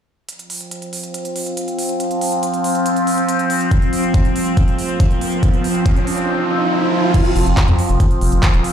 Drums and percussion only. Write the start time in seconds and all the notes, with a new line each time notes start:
0.29 closed hi-hat
0.39 closed hi-hat
0.50 open hi-hat
0.61 closed hi-hat
0.71 closed hi-hat
0.82 closed hi-hat
0.93 open hi-hat
1.04 closed hi-hat
1.14 closed hi-hat
1.25 closed hi-hat
1.36 open hi-hat
1.46 closed hi-hat
1.57 closed hi-hat
1.68 closed hi-hat
1.79 open hi-hat
1.89 closed hi-hat
2.00 closed hi-hat
2.11 closed hi-hat
2.21 open hi-hat
2.32 closed hi-hat
2.43 closed hi-hat
2.54 closed hi-hat
2.64 open hi-hat
2.75 closed hi-hat
2.86 closed hi-hat
2.96 closed hi-hat
3.07 open hi-hat
3.18 closed hi-hat
3.29 closed hi-hat
3.39 closed hi-hat
3.50 open hi-hat
3.61 closed hi-hat
3.71 kick, closed hi-hat
3.82 closed hi-hat
3.93 open hi-hat
4.04 closed hi-hat
4.14 kick, closed hi-hat
4.25 closed hi-hat
4.36 open hi-hat
4.46 closed hi-hat
4.57 kick, closed hi-hat
4.68 closed hi-hat
4.79 open hi-hat
4.89 closed hi-hat
5.00 kick, closed hi-hat
5.11 closed hi-hat
5.21 open hi-hat
5.32 closed hi-hat
5.43 kick, closed hi-hat
5.54 closed hi-hat
5.64 open hi-hat
5.75 closed hi-hat
5.86 kick, closed hi-hat
5.96 closed hi-hat
6.07 open hi-hat
6.18 closed hi-hat
7.14 kick, closed hi-hat, crash
7.25 closed hi-hat
7.36 open hi-hat
7.46 closed hi-hat
7.57 kick, clap, closed hi-hat
7.68 closed hi-hat
7.79 open hi-hat
7.89 closed hi-hat
8.00 kick, closed hi-hat
8.11 closed hi-hat
8.21 open hi-hat
8.32 closed hi-hat
8.43 kick, clap, closed hi-hat
8.54 closed hi-hat
8.64 open hi-hat